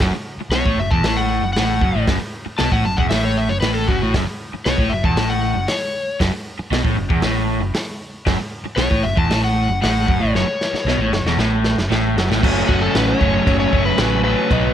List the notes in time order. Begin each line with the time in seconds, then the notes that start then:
0.00 F#1 F#2, kick, snare, open hi-hat
0.13 muted picked electric bass stroke, muted overdriven electric guitar stroke
0.38 muted picked electric bass stroke, muted overdriven electric guitar stroke
0.50 B1 B2 C#5, snare, open hi-hat
0.65 A1 A2, kick
0.77 F#1 F#2 E5
0.91 E1 E2 A5, kick
1.01 A1, snare, open hi-hat
1.05 A2
1.17 F#5
1.41 F#1 F#2
1.53 A1 F#5, snare, open hi-hat
1.57 A2
1.81 F#1 F#2, kick
1.94 A1 A2
2.07 F#1 F#2, kick, snare, open hi-hat
2.20 muted picked electric bass stroke, muted overdriven electric guitar stroke
2.46 muted overdriven electric guitar stroke, muted picked electric bass stroke
2.58 B1 B2 A5, snare, open hi-hat
2.72 A1 A2 F#5, kick
2.84 F#1 F#2 A5
2.97 E1 E2 F#5, kick
3.09 A1 A2 E5, snare, open hi-hat
3.25 C#5
3.37 E5
3.49 F#1 F#2 C#5
3.60 A1 A2 B4, snare, open hi-hat
3.74 A4
3.87 F#1 F#2 F#4, kick
4.02 A1 A2
4.14 F#1 F#2, kick, snare, open hi-hat
4.27 muted overdriven electric guitar stroke, muted picked electric bass stroke
4.53 muted picked electric bass stroke, muted overdriven electric guitar stroke
4.65 B1 B2 C#5, snare, open hi-hat
4.77 A1 A2, kick
4.90 F#1 F#2 E5
5.04 E1 E2 A5, kick
5.16 A1 A2, snare, open hi-hat
5.29 F#5
5.55 F#1 F#2
5.68 C#5, muted overdriven electric guitar stroke, muted picked electric bass stroke, snare, open hi-hat
6.20 F#1 F#2, kick, snare, open hi-hat
6.32 muted picked electric bass stroke, muted overdriven electric guitar stroke
6.59 muted picked electric bass stroke, muted overdriven electric guitar stroke
6.71 B1 B2, snare, open hi-hat
6.84 A1 A2, kick
6.96 F#1 F#2
7.10 E1 E2, kick
7.22 A1 A2, snare, open hi-hat
7.60 F#1 F#2
7.73 muted picked electric bass stroke, muted overdriven electric guitar stroke, snare, open hi-hat
8.26 F#1 F#2, kick, snare, open hi-hat
8.40 muted overdriven electric guitar stroke
8.64 muted picked electric bass stroke, muted overdriven electric guitar stroke
8.76 B1 B2 C#5, snare, open hi-hat
8.90 A1 A2, kick
9.03 F#1 F#2 E5
9.17 E1 E2 A5, kick
9.29 A1 A2, snare, open hi-hat
9.44 F#5
9.69 F#1 F#2
9.82 A1 A2 F#5, snare, open hi-hat
10.07 F#1 F#2, kick
10.20 A1 A2
10.33 F#1 F#2 C#5, snare
10.46 muted picked electric bass stroke, muted overdriven electric guitar stroke
10.61 snare
10.73 muted picked electric bass stroke, muted overdriven electric guitar stroke, snare
10.85 B1 B2, snare
10.98 A1
11.02 A2
11.10 F#1 F#2, snare
11.23 E1 E2, snare
11.37 A1 A2, snare
11.64 snare
11.77 F#1 F#2, snare
11.89 A1 A2, snare
12.16 F#1 F#2, snare
12.30 A1 A2, snare
12.43 F#1 F#2 C#3 F#3 A3 C#4, kick, crash
12.68 F#1 F#2 C#3 F#3 A3 C#4 F#4, kick
12.81 A4
12.95 A1 F#2 C#3 F#3 A3 C#4 B4, snare, crash
13.08 C#5
13.20 F#1 F#2 C#3 F#3 A3 C#4, kick
13.46 F#1 F#2 C#3 F#3 A3 C#4, kick, crash
13.60 C#5
13.71 F#1 F#2 C#3 F#3 A3 C#4, kick
13.85 B4
13.98 A1 F#2 C#3 F#3 A3 C#4, snare, crash
14.24 F#2 C#3 F#3 A3 C#4 B4
14.51 B1 B2 F#3 B3 D#4, kick, crash